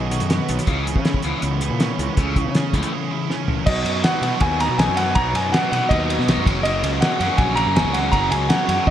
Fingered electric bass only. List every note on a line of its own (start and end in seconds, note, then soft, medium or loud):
0.00 0.19 B1 medium
0.21 0.38 F#2 medium
0.49 0.58 B1 medium
0.67 0.96 C#2 medium
0.95 1.13 C#3 medium
1.24 1.33 C#2 medium
1.43 1.69 C#2 medium
1.70 1.88 A#2 medium
1.99 2.08 C#2 medium
2.17 2.47 C#2 medium
2.45 2.63 C#3 medium
2.73 2.82 C#2 medium
3.67 3.84 B1 loud
3.84 4.02 F#2 medium
4.21 4.31 B2 medium
4.40 4.67 D#2 medium
4.69 4.78 B2 medium
4.78 4.87 B1 medium
4.88 5.14 F#2 medium
5.16 5.33 B1 loud
5.34 5.51 F#2 medium
5.72 5.80 B2 medium
5.90 6.16 D#2 medium
6.19 6.27 B2 medium
6.28 6.36 B1 medium
6.38 6.46 F#2 medium
6.46 6.81 F#1 medium
6.83 7.00 C#2 medium
7.20 7.29 F#2 medium
7.38 7.64 A#1 medium
7.67 7.75 F#2 medium
7.76 7.84 F#1 medium
7.85 8.11 C#2 medium
8.12 8.30 F#1 loud
8.31 8.49 C#2 medium
8.68 8.77 F#2 medium
8.87 8.90 A#1 medium